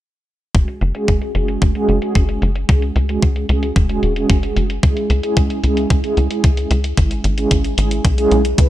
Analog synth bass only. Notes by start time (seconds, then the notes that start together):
0.55 F#1
0.81 F#1
1.08 F#1
1.35 F#1
1.62 F#1
1.89 F#1
2.15 F#1
2.42 F#1
2.69 C#2
2.96 C#2
3.23 C#2
3.49 C#2
3.76 E1
4.03 E1
4.30 F#1
4.56 F#1
4.83 C#2
5.10 C#2
5.37 C#2
5.64 C#2
5.90 C#2
6.17 C#2
6.44 C#2
6.71 C#2
6.98 G#1
7.24 G#1
7.51 G#1
7.78 G#1
8.05 B1
8.31 B1
8.58 C#2